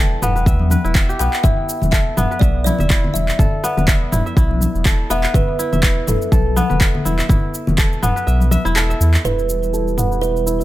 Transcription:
Already playing: E1 B3 E4 A4 B4 E5 G5
0.22 E1 B3, mid tom, high conga, shaker
0.36 B4, shaker
0.46 E2 E5, kick, shaker
0.59 high conga
0.70 B4, high conga, shaker
0.84 E1 E4, shaker
0.95 E5, kick, clap, shaker
1.09 G4, shaker
1.19 B1 B3 G5, shaker
1.33 clap, shaker
1.43 E1 E4 E5, kick, mid tom, low conga, shaker
1.69 shaker
1.82 E1, high conga, low conga, shaker
1.91 A4 E5, kick, clap, shaker
2.17 E1 B3, mid tom, high conga, shaker
2.31 B4, shaker
2.39 B1 D5 E5, kick, high conga, shaker
2.64 E4 D5, high conga, shaker
2.78 E1 E5, low conga, shaker
2.90 E4, kick, clap, shaker
3.04 low conga
3.14 E1 E5, high conga, shaker
3.28 clap, shaker
3.39 E1 A4, kick, mid tom, low conga, shaker
3.64 B3, shaker
3.77 E1 B4, high conga, low conga, shaker
3.88 E5, kick, clap, shaker
4.12 E1 E4, mid tom, high conga, shaker
4.26 E5, shaker
4.36 B1 E4, kick, shaker
4.51 high conga
4.61 high conga, shaker
4.75 E1, shaker
4.85 A4, kick, clap, shaker
5.10 E1 B3 E5, shaker
5.24 B4, clap, shaker
5.34 E1 B4 E5, kick, mid tom, low conga, shaker
5.59 E4, shaker
5.72 E1 E5, high conga, low conga, shaker
5.83 E4, kick, clap, shaker
6.07 E1 A4, mid tom, high conga, shaker
6.22 shaker
6.32 B1 A4, kick, high conga, shaker
6.56 B3, high conga, shaker
6.70 E1 B4, low conga, shaker
6.81 E5, kick, clap, shaker
6.95 low conga
7.05 E1 E4, high conga, shaker
7.19 E5, clap, shaker
7.29 E1 E4, kick, mid tom, low conga, shaker
7.54 shaker
7.67 E1, high conga, low conga, shaker
7.78 A4, kick, clap, shaker
7.93 shaker
8.02 E1 B3, mid tom, high conga, shaker
8.16 B4, shaker
8.27 B1 E5, shaker
8.40 high conga, shaker
8.51 E5, high conga, shaker
8.65 E1 E4, shaker
8.76 A4, clap, shaker
8.90 E5, shaker
9.00 E2, shaker
9.14 clap, shaker
9.24 E1 B2 E3 G3 E4 G4 B4, mid tom, shaker
9.39 shaker
9.49 shaker
9.63 shaker
9.73 A4, shaker
9.88 shaker
9.98 B3, mid tom, shaker
10.11 B4, shaker
10.21 B4 E5, shaker
10.37 shaker
10.46 E4, shaker
10.60 E5, shaker

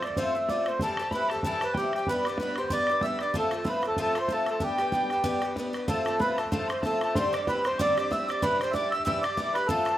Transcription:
0.02 A3 F4 D5, bodhran
0.07 C4, bodhran
0.16 F3 A3 C4 F4 C5, bodhran
0.35 A3 C4 F4 E5
0.49 F3 A3 C4 F4 D5, bodhran
0.66 A3 C4 F4 C5, bodhran
0.79 C3 E3 G3 C4 A4 A5, bodhran
0.84 G4
0.97 C4 G4 A4, bodhran
1.02 G3
1.11 E3 G3 C4 B4 B5, bodhran
1.15 G4
1.28 G4 A4 A5, bodhran
1.33 G3 C4, bodhran
1.43 C3 E3 G3 C4 A4 A5, bodhran
1.47 G4
1.61 C4 G4 B4, bodhran
1.65 G3
1.74 E3 G4 G5, bodhran
1.78 G3 C4 G4
1.93 G4 G5, bodhran
1.98 G3 C4
2.07 G3 B3 B4 B5, bodhran
2.11 D4 G4
2.24 D4 G4 D5 D6, bodhran
2.29 B3
2.38 G3 B3 B4 B5, bodhran
2.42 D4 G4
2.56 B3 D4 G4 C5 C6, bodhran
2.64 bodhran
2.70 G3 B3 D4 G4 D5 D6, bodhran
2.87 D4 G4, bodhran
2.92 B3
3.01 G3 B3 D4 E5 E6, bodhran
3.06 G4
3.19 D4 G4 D5 D6, bodhran
3.23 B3
3.34 F3 A3 C4 F4 A5, bodhran
3.38 A4
3.51 A3 C4 F4, bodhran
3.56 A4
3.64 F3 A3 C4 F4 B5, bodhran
3.69 B4
3.82 A3 C4 F4, bodhran
3.87 A4 A5, bodhran
3.96 F3 A3 C4 F4 A5, bodhran
4.01 A4
4.15 A3 C4 F4 C6, bodhran
4.21 C5
4.28 F3 A3 C4, bodhran
4.32 F4 A4 A5
4.46 A3 C4 F4 A5, bodhran
4.50 A4
4.60 G3 B3 D4 G4 G5, bodhran
4.78 B3 D4 G4, bodhran
4.92 G3 B3 D4 G4, bodhran
5.10 B3 D4 G4, bodhran
5.17 bodhran
5.24 G3 B3 D4 G4, bodhran
5.42 B3 D4 G4, bodhran
5.56 G3 B3 D4 G4, bodhran
5.73 B3 D4 G4, bodhran
5.88 F3 A3 C4 F4 A4 A5, bodhran
6.05 A3 C4 F4 A4 A5, bodhran
6.19 F3 A3 C4 F4 B4 B5, bodhran
6.36 A3 C4 F4 A4 A5, bodhran
6.46 bodhran
6.50 F3 A3 C4 F4 A4 A5, bodhran
6.68 A3 F4 C6, bodhran
6.72 C4 C5
6.82 F3 A3 C4 A5, bodhran
6.86 F4 A4
7.01 A3 C4 F4 A4 A5, bodhran
7.15 G2 D3 G3 C4 D4 G4 C5 C6, bodhran
7.33 G3 C4 D4 G4 D5 D6, bodhran
7.47 G3 C4 D4 G4 B4 B5, bodhran
7.64 G3 C4 D4 G4 C5 C6, bodhran
7.73 bodhran
7.79 G2 D3 G3 C4 D4 G4 D5 D6, bodhran
7.97 G3 C4 D4 G4 D6, bodhran
8.11 G3 C4 D4 G4 E5 E6, bodhran
8.29 G3 C4 D4 G4 D5 D6, bodhran
8.42 C3 E3 G3 D4 G4 B4 B5, bodhran
8.60 D4 G4 C5 C6, bodhran
8.64 G3
8.71 E3 G3 D5 E5 D6, bodhran
8.76 D4 G4
8.91 D4 G4 E5 E6, bodhran
8.96 G3, bodhran
9.05 C3 E3 G3 D4 G4 E5 E6, bodhran
9.22 G3 D4 G4 D5 D6, bodhran
9.37 E3 G3 D4 G4, bodhran
9.54 D4 G4 B4 B5, bodhran
9.59 G3
9.67 F3 A3 C4 F4 A4 A5, bodhran
9.85 A3 C4 F4, bodhran

